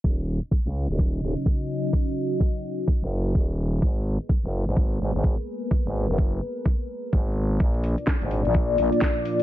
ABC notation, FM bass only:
X:1
M:4/4
L:1/16
Q:"Swing 16ths" 1/4=127
K:Ebm
V:1 name="FM bass" clef=bass
E,,,3 z2 D,,2 E,,,3 E,,, z4 z | z8 z G,,,3 E,,,4 | A,,,3 z2 G,,,2 A,,,3 A,,, A,,,2 z3 | z A,,,2 G,,,3 z6 A,,,4 |
B,,,3 z2 A,,,2 B,,,3 B,,, z4 z |]